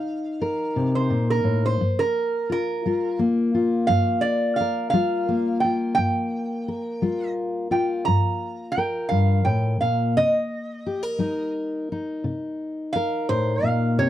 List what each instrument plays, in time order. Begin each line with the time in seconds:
Already playing: steel-string acoustic guitar C3 D#4, resonator guitar played with a steel bar F5
0.41 steel-string acoustic guitar A#4
0.76 steel-string acoustic guitar C3
0.95 resonator guitar played with a steel bar C5
1.10 steel-string acoustic guitar A#2
1.30 resonator guitar played with a steel bar A#4
1.44 steel-string acoustic guitar A2
1.66 resonator guitar played with a steel bar C5
1.81 steel-string acoustic guitar G2
1.99 resonator guitar played with a steel bar A#4
2.50 steel-string acoustic guitar F4, resonator guitar played with a steel bar A#4
2.86 steel-string acoustic guitar G3 F4
3.19 steel-string acoustic guitar A#3
3.54 steel-string acoustic guitar F4
3.87 steel-string acoustic guitar G2, resonator guitar played with a steel bar F5
4.21 resonator guitar played with a steel bar D5
4.56 resonator guitar played with a steel bar F5
4.60 steel-string acoustic guitar A#4
4.90 steel-string acoustic guitar G3 F4, resonator guitar played with a steel bar F5
5.29 steel-string acoustic guitar A#3
5.60 resonator guitar played with a steel bar G5
5.64 steel-string acoustic guitar F4
5.95 steel-string acoustic guitar G2, resonator guitar played with a steel bar G5
6.68 steel-string acoustic guitar A#4
7.02 steel-string acoustic guitar G3 F4
7.71 steel-string acoustic guitar F4, resonator guitar played with a steel bar G5
8.05 steel-string acoustic guitar G2, resonator guitar played with a steel bar A#5
8.72 resonator guitar played with a steel bar G5
8.78 steel-string acoustic guitar A#4
9.09 steel-string acoustic guitar G2, resonator guitar played with a steel bar F5
9.45 steel-string acoustic guitar A2, resonator guitar played with a steel bar G5
9.81 steel-string acoustic guitar A#2, resonator guitar played with a steel bar F5
10.17 steel-string acoustic guitar C3, resonator guitar played with a steel bar D#5
10.86 steel-string acoustic guitar G4
11.03 steel-string acoustic guitar A#4
11.19 steel-string acoustic guitar G3 D#4
11.92 steel-string acoustic guitar D#4
12.24 steel-string acoustic guitar C3
12.93 steel-string acoustic guitar A#4, resonator guitar played with a steel bar F5
13.29 steel-string acoustic guitar A2, resonator guitar played with a steel bar C5
13.63 steel-string acoustic guitar A#2, resonator guitar played with a steel bar F5
13.98 steel-string acoustic guitar C3, resonator guitar played with a steel bar C#5